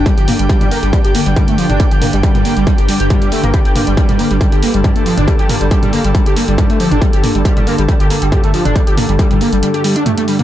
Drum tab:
HH |xxoxxxoxxxoxxxox|xxoxxxoxxxoxxxox|xxoxxxoxxxoxxxox|xxoxxxoxxxoxxxox|
T2 |--o--o------o--o|--o--o------o--o|--o--o------o--o|--o--o------o--o|
BD |o---o---o---o---|o---o---o---o---|o---o---o---o---|o---o---o---o---|

HH |xxoxxxoxxxoxxxox|xxoxxxoxxxoxxxox|
T2 |--o--o------o--o|--o--o------o--o|
BD |o---o---o---o---|o---o-----------|